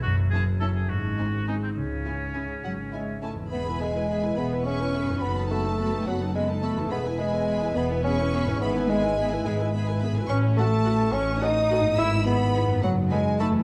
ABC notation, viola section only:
X:1
M:6/8
L:1/16
Q:3/8=71
K:C#m
V:1 name="Viola section"
z2 C2 C2 z2 ^B,2 B,2 | z2 C2 C2 z2 C2 C2 | [K:E] [B,G] [EB] [B,G] [EB] [B,G] [EB] [B,G] [EB] [B,G] [EB] [B,G] [EB] | [B,F] [DA] [B,F] [DA] [B,F] [DA] [B,F] [DA] [B,F] [DA] [B,F] [DA] |
[B,G] [EB] [B,G] [EB] [B,G] [EB] [B,G] [EB] [B,G] [EB] [B,G] [EB] | [B,G] [EB] [B,G] [EB] [B,G] [EB] [B,G] [EB] [B,G] [EB] [B,G] [EB] | z2 F2 F2 z2 F2 F2 | z2 [EG]2 [EG]2 z2 [DA]2 [DA]2 |]